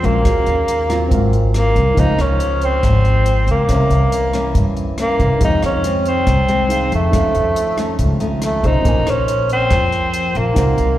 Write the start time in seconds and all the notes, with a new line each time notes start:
Already playing: F3 A#3 A#4 C5 G#5
0.02 A#1 G#3 A#3 C#4 F#4, closed hi-hat
0.22 D#2 D#3 C#4 F#4 G#4, kick, cross-stick, closed hi-hat
0.28 F5
0.46 D#2, closed hi-hat
0.68 closed hi-hat
0.89 F#3 C4 F4, cross-stick, closed hi-hat
1.08 G#1 G#2 C4, kick, closed hi-hat
1.12 A#4 F5
1.33 closed hi-hat
1.54 F#3 A#3 C4 F4, cross-stick, closed hi-hat
1.76 C2, closed hi-hat
1.94 C#2 C#3 F3 A#3 D#4 A#4, kick, closed hi-hat
1.98 C4 D#4 C5 F5
2.18 C#2 F3 A#3 C#4, cross-stick, closed hi-hat
2.40 closed hi-hat
2.61 C4, closed hi-hat
2.83 G#1 G#2 F3 A#3 C4, kick, cross-stick, closed hi-hat
3.05 closed hi-hat
3.26 closed hi-hat
3.47 C#2 A#3, closed hi-hat
3.67 C2 C3 E3 A#3 C#4 A#4, kick, cross-stick, closed hi-hat
3.71 C5 E5
3.90 C2, closed hi-hat
4.12 closed hi-hat
4.33 E3 A#3 C#4, cross-stick, closed hi-hat
4.55 G2, kick, closed hi-hat
4.77 closed hi-hat
4.98 E3 A#3 C#4, cross-stick, closed hi-hat
5.19 C2, kick, closed hi-hat
5.38 F2 D#4 G#4 C5, kick, closed hi-hat
5.42 D#3 G#3 C4 D#4 F5
5.62 F2 C#4, cross-stick, closed hi-hat
5.84 D#3 G#3 C4, closed hi-hat
6.05 C4, closed hi-hat
6.26 C2 C3, kick, cross-stick, closed hi-hat
6.48 D#3 G#3 C4, closed hi-hat
6.68 D#4 G#4 C5 F5, closed hi-hat
6.92 F2 A3, closed hi-hat
7.10 F2 D#3 A3 C#4 D#4 A4, kick, cross-stick, closed hi-hat
7.14 C#5 F5
7.35 F2, closed hi-hat
7.56 closed hi-hat
7.77 D#3 A3 C#4, cross-stick, closed hi-hat
7.98 C#2 F2, kick, closed hi-hat
8.20 D#3 A3 C#4, closed hi-hat
8.42 A3, cross-stick, closed hi-hat
8.63 B1 C#4 D#4 G#4 C5, closed hi-hat
8.82 A#1 A#3 A#4 C5, kick, closed hi-hat
8.89 G#5
9.06 A#1 C#4 G#4 C5, cross-stick, closed hi-hat
9.28 closed hi-hat
9.50 C4, closed hi-hat
9.71 F2 F3 G#4 C5, kick, cross-stick, closed hi-hat
9.92 closed hi-hat
10.14 closed hi-hat
10.35 A#1 A#3, closed hi-hat
10.53 C2 C3 A#3 D#4 F#4 A#4, kick, cross-stick, closed hi-hat
10.57 C5 F#5
10.78 C2, closed hi-hat